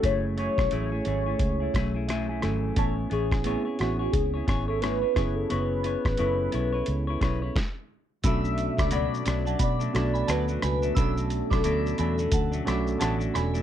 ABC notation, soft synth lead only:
X:1
M:4/4
L:1/16
Q:"Swing 16ths" 1/4=88
K:Bdor
V:1 name="Soft synth lead"
c2 c12 z2 | A2 G4 F2 G3 A B3 A | B12 z4 | e4 d4 d4 B4 |
A12 z4 |]